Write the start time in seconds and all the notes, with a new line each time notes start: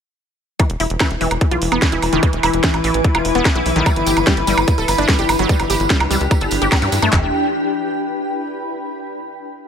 0.60 E3 E4, kick, closed hi-hat, high woodblock
0.70 E1, closed hi-hat
0.77 E1 E4 B4, open hi-hat
0.90 E1, closed hi-hat
1.00 E3, kick, snare, closed hi-hat, high woodblock
1.11 E1, closed hi-hat
1.21 E1 E3, open hi-hat
1.31 E1, closed hi-hat, high woodblock
1.41 kick, closed hi-hat
1.51 B1 F4, closed hi-hat
1.62 E1, open hi-hat
1.72 E1 B3, closed hi-hat, high woodblock
1.82 E3, kick, snare, closed hi-hat
1.92 E1 E4, closed hi-hat
2.02 E1, open hi-hat, high woodblock
2.06 B5
2.13 E1 D#3, closed hi-hat
2.23 E3, kick, closed hi-hat
2.33 E1, closed hi-hat
2.43 E1 E4, open hi-hat, high woodblock
2.53 E1, closed hi-hat
2.64 E3, kick, snare, closed hi-hat
2.74 A1, closed hi-hat, high woodblock
2.84 A1 E3, open hi-hat
2.94 A1, closed hi-hat
3.04 kick, closed hi-hat
3.15 E1 F4, closed hi-hat, high woodblock
3.25 E1, open hi-hat
3.35 E1 B3, closed hi-hat
3.45 E3, kick, snare, closed hi-hat, high woodblock
3.55 B1 E4, closed hi-hat
3.66 B1, open hi-hat
3.76 B1 D#3, closed hi-hat
3.86 G3 D4, kick, closed hi-hat, tambourine, high woodblock
3.96 G1, closed hi-hat
4.06 G1 G4, open hi-hat, tambourine
4.16 G1, closed hi-hat, tambourine, high woodblock
4.26 G3, kick, snare, closed hi-hat, tambourine
4.37 G1, closed hi-hat
4.47 G1 G3, open hi-hat, tambourine
4.57 G1, closed hi-hat, tambourine, high woodblock
4.67 kick, closed hi-hat, tambourine
4.78 D1 A4, closed hi-hat, tambourine
4.86 G1 G5, open hi-hat, tambourine, high woodblock
4.98 G1 D4, closed hi-hat, tambourine
5.09 G3, kick, snare, closed hi-hat, tambourine
5.19 G1 G4, closed hi-hat, tambourine
5.29 G1, open hi-hat, tambourine, high woodblock
5.39 G1 F#3, closed hi-hat, tambourine
5.49 G3, kick, closed hi-hat, tambourine
5.59 G1, closed hi-hat, tambourine, high woodblock
5.70 G1 G4, open hi-hat, tambourine
5.80 G1, closed hi-hat, tambourine
5.90 G3, kick, snare, closed hi-hat
6.00 C#2, closed hi-hat, high woodblock
6.11 C#2 G3, open hi-hat, tambourine
6.21 C#2, closed hi-hat, tambourine
6.31 kick, closed hi-hat, tambourine, high woodblock
6.41 G1 A4, closed hi-hat, tambourine
6.51 G1, open hi-hat, tambourine
6.62 G1 G4, closed hi-hat, tambourine
6.72 G3, kick, snare, closed hi-hat, tambourine, high woodblock
6.82 G2 G3, closed hi-hat, tambourine
6.92 G2, open hi-hat, tambourine
7.02 G2 A3, closed hi-hat, high woodblock
7.13 E1 E3 E4, kick, clap, floor tom
7.19 B4
7.25 B5